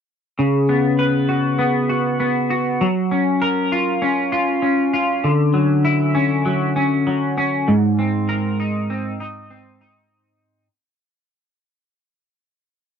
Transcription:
0.39 2.81 C#3 medium
0.69 1.58 B3 medium
0.99 2.87 B4 medium
1.29 1.89 F#4 medium
1.59 2.19 B3 medium
1.90 2.50 F#4 medium
2.20 2.87 B3 medium
2.50 3.72 F#4 medium
2.81 5.24 F#3 medium
3.11 4.01 C#4 medium
3.42 5.30 A#4 medium
3.72 4.31 F4 medium
4.02 4.62 C#4 medium
4.32 4.92 F4 medium
4.62 6.14 C#4 medium
4.93 5.30 F4 medium
5.24 7.67 D3 medium
5.54 6.45 F#3 medium
5.85 7.73 E4 medium
6.15 6.75 C#4 medium
6.46 7.06 F#3 medium
6.76 7.36 C#4 medium
7.07 8.02 F#3 medium
7.38 7.74 C#4 medium
7.68 10.68 G#2 medium
7.99 8.90 C4 medium
8.29 10.68 A#4 medium
8.60 9.20 D#4 medium
8.90 9.50 C4 medium
9.20 9.81 D#4 medium
9.50 10.67 C4 medium
9.81 10.67 D#4 medium

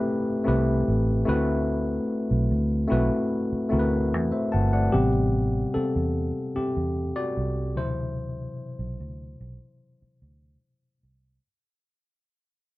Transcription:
0.00 0.44 A3 loud
0.00 0.45 C4 medium
0.00 0.46 E4 medium
0.00 0.47 G4 medium
0.00 0.48 B4 loud
0.44 0.82 C2 medium
0.44 1.24 A3 medium
0.44 1.25 C4 medium
0.44 1.26 E4 medium
0.44 1.28 G4 medium
0.44 1.28 B4 medium
0.88 1.23 A1 medium
1.25 1.98 D2 medium
1.25 2.57 A3 medium
1.25 2.57 C4 medium
1.25 2.58 E4 medium
1.25 2.58 F#4 medium
1.25 2.59 B4 loud
2.31 2.48 B1 medium
2.51 2.85 D2 medium
2.88 3.54 A3 medium
2.88 3.54 C4 medium
2.88 3.55 E4 medium
2.88 3.56 F#4 medium
2.92 3.09 B1 medium
2.92 3.56 B4 medium
3.53 muted fingered electric bass stroke soft
3.69 4.14 D2 medium
3.69 4.68 A3 medium
3.69 4.68 C4 medium
3.69 4.69 E4 medium
3.69 4.69 F#4 medium
3.69 3.79 A#4 medium
3.79 4.16 B4 medium
4.14 4.31 E2 medium
4.32 4.52 C5 soft
4.32 4.51 E5 soft
4.52 4.89 G1 medium
4.52 4.72 F#5 medium
4.52 4.72 A5 medium
4.73 5.12 D5 soft
4.73 5.12 F#5 medium
4.92 5.64 A1 loud
4.92 7.73 C3 medium
4.92 7.73 G3 soft
4.92 7.73 B3 medium
4.92 5.71 C4 medium
4.92 5.70 G4 medium
5.74 6.52 C4 medium
5.74 6.52 A4 medium
5.74 muted fingered electric bass stroke soft
5.96 6.30 E2 medium
6.56 7.13 C4 medium
6.56 7.19 G4 medium
6.56 muted fingered electric bass stroke soft
6.77 7.11 E2 medium
7.16 7.73 F#4 medium
7.16 7.79 D5 medium
7.37 7.78 C2 medium
7.75 8.47 D2 medium
7.75 10.97 B2 medium
7.75 10.97 C3 medium
7.75 10.97 E3 medium
7.75 10.97 F#3 soft
7.75 10.57 E4 medium
7.75 10.57 C5 medium
8.79 8.96 B1 medium
9.00 9.35 D2 medium
9.41 9.58 B1 medium
10.02 muted fingered electric bass stroke soft
10.22 10.56 D2 medium
11.03 11.37 C2 medium

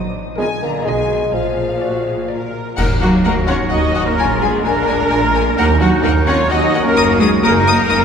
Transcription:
0.00 0.29 A#1 medium
0.38 0.47 B2 medium
0.38 0.49 G#3 medium
0.38 0.74 D4 medium
0.38 0.75 F4 medium
0.38 0.74 A#4 medium
0.38 0.61 G#5 medium
0.62 0.86 D3 medium
0.62 0.84 A#3 medium
0.62 0.86 A#5 medium
0.85 1.24 B1 medium
0.85 1.34 B2 medium
0.85 1.36 G#3 medium
0.85 1.22 D#4 medium
0.85 1.22 G#4 medium
0.85 1.22 D#5 medium
0.85 1.33 G#5 medium
1.33 1.72 A#1 medium
1.33 2.52 A#2 medium
1.33 2.54 F3 medium
1.33 2.51 F5 medium
1.81 2.04 F#4 medium
1.81 2.18 D5 soft
2.06 2.30 G#4 medium
2.30 2.77 A#4 medium
2.30 2.66 D5 medium
2.77 3.20 D#2 medium
2.77 4.15 F#3 medium
2.77 2.87 A#3 medium
2.77 2.86 D#4 medium
2.77 4.15 D#4 medium
2.77 3.00 A#4 medium
2.77 2.89 A#4 medium
2.77 2.86 A#4 medium
2.77 2.85 F#5 medium
2.77 concert bass drum medium
2.77 crash medium
3.00 3.25 F#3 medium
3.00 3.24 A#3 medium
3.00 3.07 F#4 medium
3.00 3.12 F#4 medium
3.00 3.10 F#4 medium
3.00 3.08 F#5 medium
3.24 3.67 D#2 medium
3.24 3.49 A#3 medium
3.24 3.34 D#4 medium
3.24 4.20 F#4 medium
3.24 3.35 A#4 medium
3.24 3.33 A#4 medium
3.24 3.31 A#4 medium
3.24 3.32 F#5 medium
3.47 3.57 C#4 medium
3.47 3.56 F4 medium
3.47 3.71 C#5 medium
3.47 3.54 C#5 medium
3.47 3.57 C#5 medium
3.47 3.55 F#5 medium
3.70 4.14 D#2 medium
3.70 4.07 D#4 medium
3.70 4.07 F#4 medium
3.70 4.06 D#5 medium
3.70 4.05 D#5 medium
3.70 3.78 F#5 medium
3.94 4.02 F#5 medium
4.06 4.41 A#3 medium
4.06 4.42 C#4 medium
4.06 4.40 A#4 medium
4.06 4.41 A#4 medium
4.06 4.42 A#4 medium
4.18 4.60 A#1 medium
4.18 5.58 G#3 medium
4.18 5.55 D4 medium
4.18 4.63 F4 medium
4.18 4.27 G#5 medium
4.41 4.65 G#3 medium
4.41 4.65 B3 medium
4.41 4.51 G#4 medium
4.41 4.47 G#4 medium
4.41 4.65 G#4 medium
4.41 4.51 G#5 medium
4.64 5.07 A#1 medium
4.64 5.56 A#3 medium
4.64 5.10 D4 medium
4.64 5.56 D4 medium
4.64 5.56 A#4 loud
4.64 5.56 A#4 medium
4.64 4.73 G#5 medium
4.87 4.95 G#5 medium
5.11 5.53 A#1 medium
5.11 5.57 F4 medium
5.11 5.19 G#5 medium
5.34 5.42 G#5 medium
5.57 5.99 D#2 medium
5.57 8.05 F#3 medium
5.57 5.66 A#3 medium
5.57 8.05 D#4 medium
5.57 5.66 D#4 medium
5.57 6.49 D#4 medium
5.57 5.67 A#4 loud
5.57 5.80 A#4 loud
5.57 5.65 A#4 medium
5.57 5.66 F#5 medium
5.80 5.89 F#3 medium
5.80 5.88 A#3 medium
5.80 6.03 F#4 loud
5.80 6.03 F#4 medium
5.80 5.91 F#4 medium
5.80 5.89 F#5 medium
6.03 6.45 D#2 medium
6.03 6.12 A#3 medium
6.03 6.11 D#4 medium
6.03 6.14 A#4 medium
6.03 6.27 A#4 medium
6.03 6.12 A#4 loud
6.03 6.12 F#5 medium
6.27 6.35 C#4 medium
6.27 6.50 F4 medium
6.27 6.37 C#5 loud
6.27 6.33 C#5 medium
6.27 6.50 C#5 loud
6.27 6.35 F#5 medium
6.49 6.92 D#2 medium
6.49 6.85 D#4 medium
6.49 6.84 F#4 medium
6.49 6.96 F#4 medium
6.49 6.83 D#5 medium
6.49 6.86 D#5 loud
6.49 6.86 D#5 medium
6.49 6.58 F#5 medium
6.73 6.81 F#5 medium
6.84 7.19 A#3 medium
6.84 7.18 C#4 medium
6.84 7.19 A#4 loud
6.84 7.20 A#4 loud
6.96 7.38 F#1 medium
6.96 7.42 F#4 medium
6.96 7.05 D#6 medium
7.18 7.43 G#3 loud
7.18 7.26 B3 medium
7.18 7.30 G#4 medium
7.18 7.28 G#4 loud
7.18 7.26 G#4 medium
7.18 7.29 D#6 medium
7.42 7.84 F#1 medium
7.42 8.05 A#3 medium
7.42 8.05 D#4 medium
7.42 7.88 D#4 loud
7.42 8.05 A#4 loud
7.42 7.50 A#4 loud
7.42 8.05 A#4 loud
7.42 7.51 D#6 medium
7.49 7.57 G#4 medium
7.56 8.05 A#4 loud
7.67 7.75 D#6 medium
7.89 8.05 F#1 medium
7.89 8.05 C#4 medium
7.89 7.98 D#6 medium

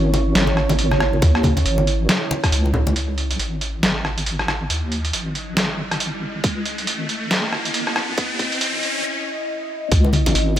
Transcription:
0.00 0.34 G#1 medium
0.00 2.92 C#4 medium
0.00 2.92 E4 medium
0.00 2.95 C#5 medium
0.14 closed hi-hat soft
0.14 muted conga medium
0.35 1.21 G#1 medium
0.35 snare loud
0.35 closed hi-hat medium
0.47 muted conga medium
0.57 cross-stick medium
0.69 closed hi-hat soft
0.69 muted conga medium
0.79 closed hi-hat medium
0.91 cross-stick medium
0.91 high conga medium
1.00 cross-stick medium
1.00 muted conga soft
1.13 high conga medium
1.22 1.64 D#2 loud
1.22 kick loud
1.22 closed hi-hat medium
1.22 muted conga medium
1.35 cross-stick medium
1.43 kick medium
1.43 closed hi-hat medium
1.43 high conga medium
1.43 low conga medium
1.57 closed hi-hat medium
1.57 muted conga medium
1.57 high conga medium
1.66 2.08 G#1 loud
1.66 closed hi-hat medium
1.78 muted conga medium
1.87 closed hi-hat medium
2.09 snare loud
2.09 closed hi-hat medium
2.09 muted conga medium
2.31 muted conga medium
2.44 kick medium
2.44 cross-stick medium
2.44 closed hi-hat medium
2.52 2.95 C#2 loud
2.52 closed hi-hat medium
2.66 muted conga soft
2.74 low conga medium
2.87 muted conga medium
2.96 3.38 C#2 medium
2.96 9.88 C#4 medium
2.96 9.88 E4 medium
2.96 9.88 D#5 medium
2.96 closed hi-hat medium
2.96 riser medium
3.18 closed hi-hat medium
3.31 closed hi-hat medium
3.39 3.82 G#1 loud
3.39 closed hi-hat medium
3.61 closed hi-hat medium
3.83 4.68 G#1 loud
3.83 snare loud
3.83 closed hi-hat medium
4.05 cross-stick medium
4.18 closed hi-hat medium
4.26 closed hi-hat medium
4.39 cross-stick medium
4.48 cross-stick medium
4.70 5.12 D#2 medium
4.70 closed hi-hat medium
4.92 closed hi-hat medium
5.05 closed hi-hat medium
5.13 5.55 G#1 loud
5.13 closed hi-hat medium
5.35 closed hi-hat medium
5.57 6.42 G#1 loud
5.57 snare loud
5.57 closed hi-hat medium
5.91 cross-stick medium
5.91 closed hi-hat medium
6.00 closed hi-hat medium
6.44 6.86 C#2 loud
6.44 kick loud
6.44 closed hi-hat medium
6.66 closed hi-hat medium
6.78 closed hi-hat medium
6.87 7.29 G#1 loud
6.87 closed hi-hat medium
7.09 closed hi-hat medium
7.31 8.16 G#1 loud
7.31 snare loud
7.31 closed hi-hat medium
7.53 cross-stick medium
7.65 closed hi-hat medium
7.74 closed hi-hat medium
7.87 cross-stick soft
7.96 cross-stick medium
8.18 8.60 D#2 medium
8.18 kick loud
8.18 closed hi-hat medium
8.39 kick medium
8.39 closed hi-hat medium
8.52 closed hi-hat medium
8.61 9.03 G#1 loud
8.61 closed hi-hat medium
8.83 closed hi-hat medium
9.92 10.34 C#2 loud
9.92 10.60 C#4 medium
9.92 10.60 E4 medium
9.92 10.60 D#5 medium
9.92 kick loud
9.92 closed hi-hat medium
10.05 muted conga medium
10.13 closed hi-hat medium
10.13 high conga medium
10.26 closed hi-hat medium
10.26 muted conga medium
10.26 high conga medium
10.35 10.60 G#1 loud
10.35 closed hi-hat medium
10.56 muted conga medium

